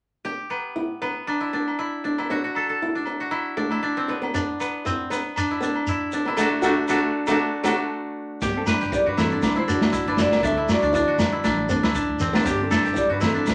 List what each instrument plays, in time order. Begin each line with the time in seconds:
0.25 steel-string acoustic guitar D4, koto G4
0.50 koto B3, low agogo
0.76 steel-string acoustic guitar E4
1.02 koto B3, steel-string acoustic guitar D4, low agogo
1.27 koto D4, low agogo
1.41 koto E4
1.53 steel-string acoustic guitar B3, koto D4
1.68 low agogo
1.79 koto E4
2.04 koto D4, steel-string acoustic guitar D4
2.18 steel-string acoustic guitar B3, koto E4, low agogo
2.30 steel-string acoustic guitar D4, koto F#4
2.44 koto F#4
2.55 koto A4, low agogo
2.69 koto A4
2.82 steel-string acoustic guitar E4
2.95 koto D4
3.06 steel-string acoustic guitar D4, low agogo
3.20 koto F#4
3.31 koto E4, low agogo
3.57 steel-string acoustic guitar A3, koto D4
3.71 koto E4, low agogo
3.83 koto D4
3.97 koto C4
4.08 koto B3, steel-string acoustic guitar D4
4.22 steel-string acoustic guitar B3, low agogo
4.34 koto D4, steel-string acoustic guitar D4, shekere
4.60 koto B3, low agogo, shekere
4.85 koto C4, steel-string acoustic guitar E4, shekere
5.10 koto B3, steel-string acoustic guitar D4, low agogo, shekere
5.36 koto D4, low agogo, shekere
5.51 koto E4
5.61 steel-string acoustic guitar B3, koto D4, shekere
5.76 low agogo
5.87 koto E4, shekere
6.12 steel-string acoustic guitar D4, koto D4, shekere
6.25 steel-string acoustic guitar B3, koto E4, low agogo
6.37 steel-string acoustic guitar A3 D4 F#4, koto A3 D4, low agogo, shekere
6.41 koto F#4
6.62 steel-string acoustic guitar A3 D4 F#4, koto A3 D4 F#4, low agogo, shekere
6.88 steel-string acoustic guitar A3 D4 F#4, koto A3 D4 F#4, low agogo, shekere
7.27 koto A3 D4, steel-string acoustic guitar A3 D4 F#4, low agogo, shekere
7.31 koto F#4
7.63 koto A3 D4 F#4, steel-string acoustic guitar A3 D4 F#4, low agogo, shekere
8.41 upright bass G1, clean electric guitar B3 G4, steel-string acoustic guitar D4, koto G4, kick, snare, shekere
8.57 clean electric guitar C4 A4
8.66 clean electric guitar D4 B4, koto B4, snare, low agogo, shekere
8.81 upright bass G1, koto G4, shekere
8.92 steel-string acoustic guitar E4, clean electric guitar G4 D5, kick, shekere
9.06 upright bass G2, clean electric guitar D4 B4, koto F#4
9.17 clean electric guitar C4 A4, steel-string acoustic guitar D4, koto E4, snare, low conga, low agogo, shekere
9.32 koto D4
9.42 upright bass D2, clean electric guitar D4 B4, kick, snare, low agogo, shekere
9.56 koto E4, clean electric guitar E4 C5, high conga
9.68 koto D4, clean electric guitar F#4 D5, muted steel-string acoustic guitar stroke, high conga, shekere
9.81 upright bass G1, snare, high conga, low agogo
9.93 koto E4, kick, shekere
10.06 upright bass G1, koto D4, clean electric guitar D4 B4
10.17 steel-string acoustic guitar D4, koto E4, clean electric guitar F#4, snare, low conga, shekere
10.22 clean electric guitar D5
10.31 steel-string acoustic guitar B3, snare, low agogo
10.43 upright bass D2, koto D4, steel-string acoustic guitar D4, clean electric guitar A4 E5, kick, shekere
10.57 koto E4
10.69 clean electric guitar F#4, snare, low agogo, shekere
10.74 clean electric guitar D5
10.82 upright bass D2, koto D4, shekere
10.93 koto D4, steel-string acoustic guitar E4, kick, shekere
11.07 upright bass D3, koto F#4
11.18 steel-string acoustic guitar D4, snare, low conga, low agogo, shekere
11.32 koto E4
11.44 upright bass A1, koto D4, kick, snare, low agogo, shekere
11.58 high conga
11.69 steel-string acoustic guitar C4, koto D4, high conga, shekere
11.83 upright bass D2, koto E4, snare, high conga, low agogo
11.95 koto D4, kick, shekere
12.09 upright bass D2
12.19 koto C4, steel-string acoustic guitar D4, low conga, shekere
12.33 steel-string acoustic guitar B3, koto D4, snare, low agogo
12.44 upright bass G1, steel-string acoustic guitar D4, koto G4, kick, shekere
12.48 clean electric guitar B3 G4
12.61 clean electric guitar C4 A4
12.71 clean electric guitar D4 B4, koto A4, snare, low agogo, shekere
12.85 upright bass G1, koto G4, shekere
12.94 steel-string acoustic guitar E4, clean electric guitar G4, kick, shekere
12.98 clean electric guitar D5
13.09 upright bass G2, clean electric guitar D4 B4, koto F#4
13.20 clean electric guitar C4, steel-string acoustic guitar D4, koto E4, snare, low conga, low agogo, shekere
13.25 clean electric guitar A4
13.34 koto D4
13.46 upright bass D2, kick, snare, low agogo, shekere
13.50 clean electric guitar D4